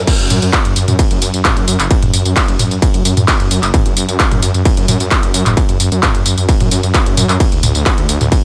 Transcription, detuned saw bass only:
0, 0, Header, 1, 2, 480
1, 0, Start_track
1, 0, Tempo, 458015
1, 78, Time_signature, 4, 2, 24, 8
1, 8845, End_track
2, 0, Start_track
2, 0, Title_t, "Detuned saw bass"
2, 0, Program_c, 0, 39
2, 202, Note_on_c, 0, 42, 88
2, 290, Note_off_c, 0, 42, 0
2, 317, Note_on_c, 0, 42, 104
2, 412, Note_off_c, 0, 42, 0
2, 441, Note_on_c, 0, 42, 88
2, 529, Note_off_c, 0, 42, 0
2, 682, Note_on_c, 0, 42, 81
2, 769, Note_off_c, 0, 42, 0
2, 797, Note_on_c, 0, 42, 103
2, 892, Note_off_c, 0, 42, 0
2, 922, Note_on_c, 0, 42, 94
2, 1010, Note_off_c, 0, 42, 0
2, 1162, Note_on_c, 0, 42, 86
2, 1249, Note_off_c, 0, 42, 0
2, 1277, Note_on_c, 0, 42, 101
2, 1372, Note_off_c, 0, 42, 0
2, 1402, Note_on_c, 0, 42, 91
2, 1489, Note_off_c, 0, 42, 0
2, 1642, Note_on_c, 0, 42, 84
2, 1730, Note_off_c, 0, 42, 0
2, 1757, Note_on_c, 0, 42, 101
2, 1852, Note_off_c, 0, 42, 0
2, 1882, Note_on_c, 0, 30, 95
2, 1969, Note_off_c, 0, 30, 0
2, 2122, Note_on_c, 0, 42, 91
2, 2210, Note_off_c, 0, 42, 0
2, 2237, Note_on_c, 0, 42, 104
2, 2332, Note_off_c, 0, 42, 0
2, 2362, Note_on_c, 0, 42, 94
2, 2450, Note_off_c, 0, 42, 0
2, 2602, Note_on_c, 0, 42, 85
2, 2689, Note_off_c, 0, 42, 0
2, 2717, Note_on_c, 0, 42, 103
2, 2812, Note_off_c, 0, 42, 0
2, 2842, Note_on_c, 0, 42, 94
2, 2929, Note_off_c, 0, 42, 0
2, 3081, Note_on_c, 0, 42, 85
2, 3169, Note_off_c, 0, 42, 0
2, 3197, Note_on_c, 0, 42, 96
2, 3292, Note_off_c, 0, 42, 0
2, 3322, Note_on_c, 0, 42, 95
2, 3409, Note_off_c, 0, 42, 0
2, 3562, Note_on_c, 0, 42, 86
2, 3649, Note_off_c, 0, 42, 0
2, 3677, Note_on_c, 0, 42, 96
2, 3772, Note_off_c, 0, 42, 0
2, 3802, Note_on_c, 0, 30, 94
2, 3889, Note_off_c, 0, 30, 0
2, 4042, Note_on_c, 0, 42, 88
2, 4130, Note_off_c, 0, 42, 0
2, 4156, Note_on_c, 0, 42, 101
2, 4252, Note_off_c, 0, 42, 0
2, 4282, Note_on_c, 0, 42, 90
2, 4369, Note_off_c, 0, 42, 0
2, 4522, Note_on_c, 0, 42, 82
2, 4610, Note_off_c, 0, 42, 0
2, 4637, Note_on_c, 0, 42, 104
2, 4732, Note_off_c, 0, 42, 0
2, 4762, Note_on_c, 0, 42, 93
2, 4850, Note_off_c, 0, 42, 0
2, 5002, Note_on_c, 0, 42, 89
2, 5090, Note_off_c, 0, 42, 0
2, 5117, Note_on_c, 0, 42, 101
2, 5212, Note_off_c, 0, 42, 0
2, 5242, Note_on_c, 0, 42, 96
2, 5330, Note_off_c, 0, 42, 0
2, 5482, Note_on_c, 0, 42, 89
2, 5569, Note_off_c, 0, 42, 0
2, 5597, Note_on_c, 0, 42, 99
2, 5692, Note_off_c, 0, 42, 0
2, 5722, Note_on_c, 0, 30, 95
2, 5809, Note_off_c, 0, 30, 0
2, 5963, Note_on_c, 0, 42, 92
2, 6050, Note_off_c, 0, 42, 0
2, 6077, Note_on_c, 0, 42, 105
2, 6172, Note_off_c, 0, 42, 0
2, 6201, Note_on_c, 0, 42, 93
2, 6289, Note_off_c, 0, 42, 0
2, 6442, Note_on_c, 0, 42, 83
2, 6529, Note_off_c, 0, 42, 0
2, 6557, Note_on_c, 0, 42, 100
2, 6652, Note_off_c, 0, 42, 0
2, 6681, Note_on_c, 0, 42, 96
2, 6769, Note_off_c, 0, 42, 0
2, 6921, Note_on_c, 0, 42, 87
2, 7009, Note_off_c, 0, 42, 0
2, 7037, Note_on_c, 0, 42, 101
2, 7132, Note_off_c, 0, 42, 0
2, 7162, Note_on_c, 0, 42, 94
2, 7249, Note_off_c, 0, 42, 0
2, 7402, Note_on_c, 0, 42, 90
2, 7490, Note_off_c, 0, 42, 0
2, 7517, Note_on_c, 0, 42, 97
2, 7612, Note_off_c, 0, 42, 0
2, 7642, Note_on_c, 0, 42, 90
2, 7729, Note_off_c, 0, 42, 0
2, 7882, Note_on_c, 0, 38, 87
2, 7969, Note_off_c, 0, 38, 0
2, 7998, Note_on_c, 0, 38, 103
2, 8092, Note_off_c, 0, 38, 0
2, 8123, Note_on_c, 0, 38, 93
2, 8210, Note_off_c, 0, 38, 0
2, 8362, Note_on_c, 0, 38, 84
2, 8450, Note_off_c, 0, 38, 0
2, 8477, Note_on_c, 0, 38, 99
2, 8572, Note_off_c, 0, 38, 0
2, 8601, Note_on_c, 0, 38, 92
2, 8689, Note_off_c, 0, 38, 0
2, 8845, End_track
0, 0, End_of_file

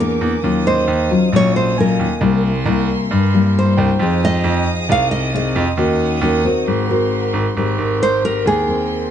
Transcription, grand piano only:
0, 0, Header, 1, 2, 480
1, 0, Start_track
1, 0, Tempo, 445434
1, 470, Time_signature, 4, 2, 24, 8
1, 9813, End_track
2, 0, Start_track
2, 0, Title_t, "Grand piano"
2, 0, Program_c, 0, 0
2, 0, Note_on_c, 0, 40, 83
2, 187, Note_off_c, 0, 40, 0
2, 228, Note_on_c, 0, 40, 97
2, 341, Note_off_c, 0, 40, 0
2, 471, Note_on_c, 0, 39, 90
2, 916, Note_off_c, 0, 39, 0
2, 943, Note_on_c, 0, 39, 98
2, 1169, Note_off_c, 0, 39, 0
2, 1428, Note_on_c, 0, 34, 87
2, 2148, Note_off_c, 0, 34, 0
2, 2149, Note_on_c, 0, 39, 93
2, 2261, Note_off_c, 0, 39, 0
2, 2381, Note_on_c, 0, 36, 93
2, 2831, Note_off_c, 0, 36, 0
2, 2863, Note_on_c, 0, 36, 105
2, 3088, Note_off_c, 0, 36, 0
2, 3351, Note_on_c, 0, 43, 86
2, 4069, Note_off_c, 0, 43, 0
2, 4073, Note_on_c, 0, 36, 99
2, 4182, Note_off_c, 0, 36, 0
2, 4304, Note_on_c, 0, 41, 98
2, 4752, Note_off_c, 0, 41, 0
2, 4786, Note_on_c, 0, 41, 106
2, 5010, Note_off_c, 0, 41, 0
2, 5271, Note_on_c, 0, 36, 91
2, 5989, Note_off_c, 0, 36, 0
2, 5989, Note_on_c, 0, 41, 102
2, 6100, Note_off_c, 0, 41, 0
2, 6221, Note_on_c, 0, 39, 103
2, 6671, Note_off_c, 0, 39, 0
2, 6695, Note_on_c, 0, 39, 117
2, 6924, Note_off_c, 0, 39, 0
2, 7192, Note_on_c, 0, 32, 84
2, 7868, Note_off_c, 0, 32, 0
2, 7903, Note_on_c, 0, 32, 100
2, 8018, Note_off_c, 0, 32, 0
2, 8154, Note_on_c, 0, 32, 94
2, 8371, Note_off_c, 0, 32, 0
2, 8387, Note_on_c, 0, 32, 94
2, 9067, Note_off_c, 0, 32, 0
2, 9111, Note_on_c, 0, 39, 75
2, 9790, Note_off_c, 0, 39, 0
2, 9813, End_track
0, 0, End_of_file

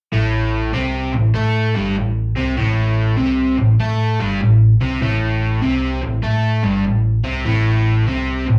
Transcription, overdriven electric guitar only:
0, 0, Header, 1, 2, 480
1, 0, Start_track
1, 0, Tempo, 610998
1, 107, Time_signature, 4, 2, 24, 8
1, 6748, End_track
2, 0, Start_track
2, 0, Title_t, "Overdriven electric guitar"
2, 0, Program_c, 0, 29
2, 96, Note_on_c, 0, 45, 76
2, 102, Note_on_c, 0, 57, 88
2, 570, Note_off_c, 0, 45, 0
2, 574, Note_on_c, 0, 48, 83
2, 575, Note_off_c, 0, 57, 0
2, 578, Note_on_c, 0, 60, 90
2, 887, Note_off_c, 0, 48, 0
2, 889, Note_off_c, 0, 60, 0
2, 896, Note_on_c, 0, 45, 67
2, 1028, Note_off_c, 0, 45, 0
2, 1054, Note_on_c, 0, 57, 86
2, 1064, Note_on_c, 0, 69, 97
2, 1366, Note_off_c, 0, 57, 0
2, 1372, Note_off_c, 0, 69, 0
2, 1377, Note_on_c, 0, 43, 75
2, 1381, Note_on_c, 0, 55, 93
2, 1535, Note_off_c, 0, 43, 0
2, 1538, Note_off_c, 0, 55, 0
2, 1542, Note_on_c, 0, 45, 62
2, 1796, Note_off_c, 0, 45, 0
2, 1853, Note_on_c, 0, 48, 74
2, 1860, Note_on_c, 0, 60, 91
2, 2013, Note_off_c, 0, 48, 0
2, 2016, Note_on_c, 0, 45, 82
2, 2017, Note_off_c, 0, 60, 0
2, 2020, Note_on_c, 0, 57, 94
2, 2488, Note_off_c, 0, 45, 0
2, 2492, Note_on_c, 0, 48, 74
2, 2495, Note_off_c, 0, 57, 0
2, 2500, Note_on_c, 0, 60, 86
2, 2804, Note_off_c, 0, 48, 0
2, 2809, Note_off_c, 0, 60, 0
2, 2814, Note_on_c, 0, 45, 68
2, 2946, Note_off_c, 0, 45, 0
2, 2984, Note_on_c, 0, 57, 89
2, 2986, Note_on_c, 0, 69, 99
2, 3291, Note_off_c, 0, 57, 0
2, 3292, Note_off_c, 0, 69, 0
2, 3294, Note_on_c, 0, 43, 75
2, 3300, Note_on_c, 0, 55, 85
2, 3453, Note_off_c, 0, 43, 0
2, 3456, Note_off_c, 0, 55, 0
2, 3465, Note_on_c, 0, 45, 67
2, 3717, Note_off_c, 0, 45, 0
2, 3777, Note_on_c, 0, 48, 94
2, 3782, Note_on_c, 0, 60, 93
2, 3934, Note_off_c, 0, 48, 0
2, 3937, Note_on_c, 0, 45, 79
2, 3938, Note_off_c, 0, 60, 0
2, 3945, Note_on_c, 0, 57, 86
2, 4412, Note_off_c, 0, 45, 0
2, 4415, Note_on_c, 0, 48, 84
2, 4418, Note_off_c, 0, 57, 0
2, 4424, Note_on_c, 0, 60, 90
2, 4727, Note_off_c, 0, 48, 0
2, 4732, Note_off_c, 0, 60, 0
2, 4736, Note_on_c, 0, 45, 70
2, 4868, Note_off_c, 0, 45, 0
2, 4892, Note_on_c, 0, 57, 82
2, 4901, Note_on_c, 0, 69, 92
2, 5206, Note_off_c, 0, 57, 0
2, 5210, Note_off_c, 0, 69, 0
2, 5212, Note_on_c, 0, 43, 83
2, 5215, Note_on_c, 0, 55, 89
2, 5373, Note_off_c, 0, 43, 0
2, 5375, Note_off_c, 0, 55, 0
2, 5378, Note_on_c, 0, 45, 64
2, 5636, Note_off_c, 0, 45, 0
2, 5686, Note_on_c, 0, 48, 84
2, 5689, Note_on_c, 0, 60, 98
2, 5850, Note_off_c, 0, 48, 0
2, 5853, Note_off_c, 0, 60, 0
2, 5853, Note_on_c, 0, 45, 85
2, 5857, Note_on_c, 0, 57, 93
2, 6335, Note_off_c, 0, 45, 0
2, 6337, Note_off_c, 0, 57, 0
2, 6338, Note_on_c, 0, 48, 78
2, 6347, Note_on_c, 0, 60, 83
2, 6651, Note_off_c, 0, 48, 0
2, 6655, Note_on_c, 0, 45, 67
2, 6656, Note_off_c, 0, 60, 0
2, 6748, Note_off_c, 0, 45, 0
2, 6748, End_track
0, 0, End_of_file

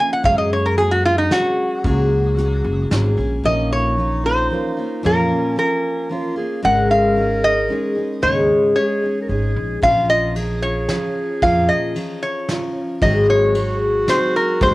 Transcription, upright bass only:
0, 0, Header, 1, 2, 480
1, 0, Start_track
1, 0, Key_signature, -5, "minor"
1, 0, Tempo, 531915
1, 222, Time_signature, 3, 2, 24, 8
1, 13304, End_track
2, 0, Start_track
2, 0, Title_t, "Upright bass"
2, 0, Program_c, 0, 32
2, 222, Note_on_c, 0, 42, 90
2, 1148, Note_off_c, 0, 42, 0
2, 1667, Note_on_c, 0, 37, 89
2, 2351, Note_off_c, 0, 37, 0
2, 2387, Note_on_c, 0, 30, 85
2, 2603, Note_off_c, 0, 30, 0
2, 2625, Note_on_c, 0, 32, 80
2, 2842, Note_off_c, 0, 32, 0
2, 2866, Note_on_c, 0, 34, 80
2, 3083, Note_off_c, 0, 34, 0
2, 3114, Note_on_c, 0, 34, 85
2, 4035, Note_off_c, 0, 34, 0
2, 4553, Note_on_c, 0, 41, 88
2, 4779, Note_off_c, 0, 41, 0
2, 5999, Note_on_c, 0, 32, 89
2, 6919, Note_off_c, 0, 32, 0
2, 7422, Note_on_c, 0, 39, 98
2, 7654, Note_off_c, 0, 39, 0
2, 8385, Note_on_c, 0, 32, 70
2, 8603, Note_off_c, 0, 32, 0
2, 8629, Note_on_c, 0, 34, 79
2, 8846, Note_off_c, 0, 34, 0
2, 8866, Note_on_c, 0, 34, 84
2, 9791, Note_off_c, 0, 34, 0
2, 10307, Note_on_c, 0, 41, 104
2, 10535, Note_off_c, 0, 41, 0
2, 11747, Note_on_c, 0, 32, 85
2, 12670, Note_off_c, 0, 32, 0
2, 13186, Note_on_c, 0, 39, 104
2, 13304, Note_off_c, 0, 39, 0
2, 13304, End_track
0, 0, End_of_file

